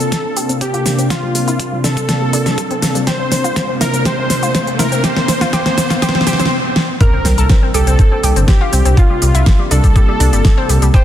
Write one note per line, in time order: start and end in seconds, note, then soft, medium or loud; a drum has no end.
0.00 6.47 C3 medium
0.00 6.47 A#3 medium
0.00 6.47 C4 medium
0.00 0.09 C4 medium
0.00 6.47 D4 medium
0.00 6.47 F4 medium
0.00 0.52 A4 loud
0.00 closed hi-hat medium
0.00 riser medium
0.00 shaker soft
0.12 0.22 C4 medium
0.12 kick loud
0.12 snare soft
0.12 closed hi-hat medium
0.12 shaker soft
0.25 0.34 C4 medium
0.37 0.46 G4 loud
0.37 open hi-hat loud
0.37 shaker medium
0.49 0.58 C4 medium
0.49 closed hi-hat medium
0.49 shaker soft
0.61 0.71 C4 medium
0.61 1.06 G4 medium
0.61 kick loud
0.61 closed hi-hat medium
0.61 shaker soft
0.74 0.83 F4 medium
0.74 closed hi-hat soft
0.86 0.95 C4 medium
0.86 snare medium
0.86 open hi-hat loud
0.86 shaker medium
0.98 1.07 C4 medium
0.98 closed hi-hat medium
0.98 shaker soft
1.10 1.20 F4 loud
1.10 1.75 F4 loud
1.10 kick loud
1.10 snare medium
1.10 closed hi-hat medium
1.10 shaker soft
1.23 1.32 G3 medium
1.35 1.44 G3 medium
1.35 open hi-hat loud
1.35 shaker medium
1.48 1.56 E4 medium
1.48 closed hi-hat soft
1.48 shaker soft
1.60 1.69 G3 medium
1.60 kick loud
1.60 closed hi-hat medium
1.60 shaker soft
1.72 1.81 G3 medium
1.84 1.94 D4 loud
1.84 2.98 A4 loud
1.84 snare medium
1.84 open hi-hat medium
1.84 shaker medium
1.97 2.06 G3 medium
1.97 kick medium
1.97 closed hi-hat medium
1.97 shaker soft
2.09 2.18 G3 medium
2.09 kick loud
2.09 snare medium
2.09 closed hi-hat medium
2.09 shaker soft
2.21 2.30 G3 medium
2.33 2.43 D4 medium
2.33 open hi-hat loud
2.33 shaker medium
2.46 2.55 G3 medium
2.46 snare medium
2.46 closed hi-hat medium
2.46 shaker soft
2.58 2.67 G3 medium
2.58 kick loud
2.58 closed hi-hat medium
2.58 shaker soft
2.71 2.79 C4 medium
2.71 closed hi-hat soft
2.82 2.92 G3 medium
2.82 snare medium
2.82 open hi-hat loud
2.82 shaker medium
2.95 3.04 G3 medium
2.95 closed hi-hat medium
2.95 shaker soft
3.07 3.17 G4 medium
3.07 3.71 C5 medium
3.07 kick loud
3.07 snare medium
3.07 closed hi-hat medium
3.07 shaker soft
3.20 3.29 C4 medium
3.32 3.41 C4 medium
3.32 snare medium
3.32 open hi-hat loud
3.32 shaker medium
3.44 3.53 F4 medium
3.44 closed hi-hat soft
3.44 shaker soft
3.56 3.66 C4 medium
3.56 kick loud
3.56 snare medium
3.56 closed hi-hat medium
3.56 shaker soft
3.69 3.78 C4 medium
3.81 3.90 E4 medium
3.81 4.04 A#4 medium
3.81 snare medium
3.81 open hi-hat loud
3.81 shaker medium
3.94 4.02 C4 medium
3.94 closed hi-hat medium
3.94 shaker soft
4.05 4.15 G4 medium
4.05 4.70 C5 loud
4.05 kick loud
4.05 snare medium
4.05 closed hi-hat medium
4.05 shaker soft
4.18 4.27 C4 medium
4.30 4.40 C4 medium
4.30 snare medium
4.30 open hi-hat loud
4.30 shaker medium
4.43 4.52 F4 medium
4.43 closed hi-hat medium
4.43 shaker soft
4.55 4.64 C4 medium
4.55 kick loud
4.55 snare medium
4.55 closed hi-hat medium
4.55 shaker soft
4.67 4.76 C4 medium
4.67 closed hi-hat soft
4.79 4.89 E4 medium
4.79 5.02 A#4 loud
4.79 snare medium
4.79 open hi-hat loud
4.79 shaker medium
4.92 5.01 C4 medium
4.92 closed hi-hat medium
4.92 shaker soft
5.04 5.13 G4 loud
5.04 5.51 C5 loud
5.04 kick loud
5.04 snare medium
5.04 closed hi-hat medium
5.04 shaker soft
5.17 5.25 C4 medium
5.17 snare medium
5.28 5.38 C4 medium
5.28 snare loud
5.28 open hi-hat loud
5.28 shaker medium
5.41 5.50 F4 medium
5.41 snare medium
5.41 closed hi-hat soft
5.41 shaker soft
5.53 5.62 G4 loud
5.53 6.00 C5 loud
5.53 kick loud
5.53 snare loud
5.53 closed hi-hat medium
5.53 shaker soft
5.66 5.75 C4 medium
5.66 snare medium
5.66 closed hi-hat soft
5.78 5.87 C4 medium
5.78 snare loud
5.78 open hi-hat medium
5.78 shaker medium
5.90 5.99 F4 medium
5.90 kick medium
5.90 snare medium
5.90 closed hi-hat soft
5.90 shaker soft
6.02 6.12 G4 loud
6.02 6.25 C5 loud
6.02 kick loud
6.02 snare loud
6.02 closed hi-hat medium
6.02 shaker soft
6.09 snare medium
6.15 6.24 C4 medium
6.15 snare medium
6.21 snare medium
6.27 6.36 G4 loud
6.27 6.50 C5 loud
6.27 snare loud
6.27 open hi-hat loud
6.27 shaker medium
6.33 snare medium
6.40 6.48 C4 medium
6.40 snare medium
6.40 closed hi-hat medium
6.40 shaker soft
6.45 snare medium
6.76 snare loud
7.00 11.04 C3 medium
7.00 11.04 G3 medium
7.00 11.04 A#3 medium
7.00 10.90 D4 medium
7.00 11.04 F4 medium
7.00 7.65 A#4 loud
7.00 7.10 A#4 loud
7.00 kick loud
7.00 closed hi-hat medium
7.00 impact medium
7.00 shaker soft
7.13 7.22 C4 medium
7.25 7.34 C2 loud
7.25 7.35 C4 medium
7.25 snare medium
7.25 open hi-hat loud
7.25 shaker medium
7.38 7.46 C2 medium
7.38 7.47 A4 loud
7.38 closed hi-hat medium
7.38 shaker soft
7.50 7.59 C4 medium
7.50 kick loud
7.50 snare loud
7.50 closed hi-hat medium
7.50 shaker soft
7.63 7.71 C4 medium
7.74 7.83 C2 loud
7.74 7.84 G4 medium
7.74 8.39 A4 loud
7.74 open hi-hat medium
7.74 shaker medium
7.87 7.95 C2 medium
7.87 7.96 C4 medium
7.87 closed hi-hat medium
7.87 shaker soft
7.99 8.08 C4 medium
7.99 kick loud
7.99 closed hi-hat medium
7.99 shaker soft
8.12 8.21 C4 medium
8.24 8.32 C2 loud
8.24 8.33 G4 loud
8.24 open hi-hat loud
8.24 shaker medium
8.36 8.44 G1 medium
8.36 8.45 C4 medium
8.36 closed hi-hat medium
8.36 shaker soft
8.48 8.58 C4 medium
8.48 8.99 G4 medium
8.48 8.97 G4 medium
8.48 kick loud
8.48 snare loud
8.48 closed hi-hat medium
8.48 shaker soft
8.61 8.70 F4 medium
8.73 8.81 C2 loud
8.73 8.82 C4 medium
8.73 open hi-hat loud
8.73 shaker medium
8.85 8.93 C2 medium
8.85 8.94 C4 medium
8.85 closed hi-hat medium
8.85 shaker soft
8.97 9.07 F4 loud
8.97 9.62 F4 loud
8.97 kick loud
8.97 closed hi-hat medium
8.97 shaker soft
9.10 9.19 G3 medium
9.22 9.31 C2 loud
9.22 9.31 G3 medium
9.22 open hi-hat loud
9.22 shaker medium
9.35 9.43 C2 medium
9.35 9.43 E4 loud
9.35 closed hi-hat medium
9.35 shaker soft
9.46 9.56 G3 medium
9.46 kick loud
9.46 snare loud
9.46 closed hi-hat medium
9.46 shaker soft
9.59 9.68 G3 medium
9.71 9.80 C2 loud
9.71 9.81 D4 loud
9.71 10.85 A4 loud
9.71 open hi-hat loud
9.71 shaker medium
9.84 9.92 C2 medium
9.84 9.93 G3 medium
9.84 kick medium
9.84 closed hi-hat medium
9.84 shaker soft
9.96 10.05 G3 medium
9.96 kick loud
9.96 closed hi-hat medium
9.96 shaker soft
10.08 10.17 G3 medium
10.20 10.29 C2 loud
10.20 10.30 D4 loud
10.20 open hi-hat loud
10.20 shaker medium
10.33 10.41 G1 medium
10.33 10.42 G3 medium
10.33 closed hi-hat medium
10.33 shaker soft
10.45 10.54 G3 medium
10.45 kick loud
10.45 snare loud
10.45 closed hi-hat medium
10.45 shaker soft
10.58 10.66 C4 loud
10.69 10.78 C2 medium
10.69 10.79 G3 medium
10.69 open hi-hat loud
10.69 shaker medium
10.82 10.90 C2 medium
10.82 10.91 G3 medium
10.82 closed hi-hat medium
10.82 shaker soft
10.94 11.04 C4 medium
10.94 11.04 G4 loud
10.94 11.04 C5 loud
10.94 kick loud
10.94 closed hi-hat medium
10.94 shaker soft